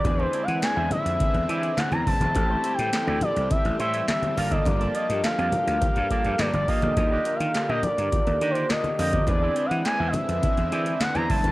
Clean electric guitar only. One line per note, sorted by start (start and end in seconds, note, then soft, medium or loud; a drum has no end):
0.04 muted clean electric guitar stroke soft
0.19 0.32 C4 medium
0.19 0.33 E4 medium
0.19 0.33 G#4 medium
0.19 0.33 D5 medium
0.33 0.44 C4 medium
0.33 0.44 E4 medium
0.33 0.44 G#4 medium
0.33 0.45 D5 medium
0.62 muted clean electric guitar stroke soft
0.76 0.90 C4 medium
0.76 0.90 E4 medium
0.76 0.91 G#4 medium
0.76 0.90 E5 loud
0.91 muted clean electric guitar stroke soft
1.05 muted clean electric guitar stroke soft
1.20 muted clean electric guitar stroke medium
1.34 muted clean electric guitar stroke medium
1.48 1.62 C4 medium
1.48 1.62 E4 medium
1.48 1.62 G#4 medium
1.48 1.61 D5 medium
1.63 1.74 C4 medium
1.63 1.74 E4 medium
1.63 1.74 G#4 medium
1.63 1.74 D5 medium
1.77 muted clean electric guitar stroke soft
1.92 muted clean electric guitar stroke soft
2.21 muted clean electric guitar stroke soft
2.35 muted clean electric guitar stroke soft
2.50 2.63 A3 medium
2.50 2.63 E4 medium
2.50 2.64 G4 medium
2.50 2.63 C5 medium
2.64 2.75 A3 medium
2.64 2.75 E4 medium
2.64 2.75 G4 medium
2.64 2.75 C5 medium
2.93 muted clean electric guitar stroke medium
3.07 3.20 A3 medium
3.07 3.21 E4 medium
3.07 3.21 G4 medium
3.07 3.21 D5 loud
3.22 muted clean electric guitar stroke soft
3.36 muted clean electric guitar stroke soft
3.50 muted clean electric guitar stroke soft
3.65 muted clean electric guitar stroke soft
3.79 3.93 A3 medium
3.79 3.93 E4 medium
3.79 3.93 G4 medium
3.79 3.92 C5 loud
3.93 4.05 A3 medium
3.93 4.05 E4 medium
3.93 4.05 G4 medium
3.93 4.04 C5 medium
4.08 muted clean electric guitar stroke soft
4.22 muted clean electric guitar stroke soft
4.37 4.51 A#3 loud
4.37 4.51 F4 medium
4.37 4.50 A4 medium
4.37 4.51 F5 loud
4.51 4.63 A#3 medium
4.51 4.63 F4 medium
4.51 4.62 A4 medium
4.51 4.62 D5 medium
4.66 muted clean electric guitar stroke medium
4.80 4.93 A#3 medium
4.80 4.94 F4 medium
4.80 4.94 A4 medium
4.80 4.94 D5 medium
4.95 5.06 A#3 medium
4.95 5.06 F4 medium
4.95 5.06 A4 medium
4.95 5.06 D5 medium
5.24 muted clean electric guitar stroke soft
5.38 5.51 A#3 medium
5.38 5.52 F4 medium
5.38 5.52 A4 medium
5.38 5.52 F5 medium
5.52 muted clean electric guitar stroke soft
5.67 muted clean electric guitar stroke soft
5.81 muted clean electric guitar stroke soft
5.96 muted clean electric guitar stroke soft
6.10 6.24 A#3 loud
6.10 6.24 F4 medium
6.10 6.24 A4 loud
6.10 6.23 D5 medium
6.25 6.36 A#3 medium
6.25 6.36 F4 medium
6.25 6.36 A4 medium
6.25 6.35 D5 medium
6.40 muted clean electric guitar stroke soft
6.54 muted clean electric guitar stroke medium
6.68 6.82 A#3 loud
6.68 6.82 F4 medium
6.68 6.82 A4 loud
6.68 6.82 F5 medium
6.82 6.94 A#3 medium
6.82 6.94 F4 medium
6.82 6.93 A4 medium
6.82 6.93 D5 medium
6.97 muted clean electric guitar stroke soft
7.11 7.24 D4 medium
7.11 7.25 G4 medium
7.11 7.25 A#4 medium
7.11 7.25 D5 medium
7.26 7.36 D4 medium
7.26 7.37 G4 medium
7.26 7.37 A#4 medium
7.26 7.37 D5 medium
7.40 muted clean electric guitar stroke medium
7.54 muted clean electric guitar stroke soft
7.69 7.82 D4 medium
7.69 7.83 G4 medium
7.69 7.83 A#4 medium
7.69 7.83 F5 medium
7.98 muted clean electric guitar stroke soft
8.12 muted clean electric guitar stroke soft
8.27 muted clean electric guitar stroke medium
8.41 8.55 D4 medium
8.41 8.55 G4 medium
8.41 8.54 A#4 medium
8.41 8.54 D5 medium
8.55 8.67 D4 medium
8.55 8.67 G4 medium
8.55 8.66 A#4 medium
8.55 8.66 D5 medium
8.70 muted clean electric guitar stroke medium
8.84 muted clean electric guitar stroke soft
8.98 9.12 D4 medium
8.98 9.13 G4 loud
8.98 9.12 A#4 medium
8.98 9.13 F5 loud
9.13 9.24 D4 medium
9.13 9.24 G4 medium
9.13 9.24 A#4 medium
9.13 9.24 D5 medium
9.27 muted clean electric guitar stroke soft
9.42 9.55 C4 medium
9.42 9.55 E4 medium
9.42 9.56 G#4 medium
9.42 9.56 D5 medium
9.56 9.67 C4 medium
9.56 9.67 E4 medium
9.56 9.67 G#4 medium
9.56 9.68 D5 medium
9.85 muted clean electric guitar stroke soft
9.99 10.13 C4 medium
9.99 10.13 E4 medium
9.99 10.13 G#4 medium
9.99 10.13 E5 medium
10.14 muted clean electric guitar stroke soft
10.28 muted clean electric guitar stroke soft
10.43 muted clean electric guitar stroke soft
10.57 muted clean electric guitar stroke medium
10.72 10.86 C4 medium
10.72 10.86 E4 loud
10.72 10.85 G#4 loud
10.72 10.85 D5 loud
10.86 10.98 C4 medium
10.86 10.97 E4 medium
10.86 10.97 G#4 medium
10.86 10.97 D5 medium
11.01 muted clean electric guitar stroke medium
11.15 11.28 C4 medium
11.15 11.29 E4 medium
11.15 11.29 G#4 medium
11.15 11.29 D5 medium
11.29 11.40 C4 medium
11.29 11.40 E4 medium
11.29 11.41 G#4 medium
11.29 11.41 E5 medium
11.44 muted clean electric guitar stroke medium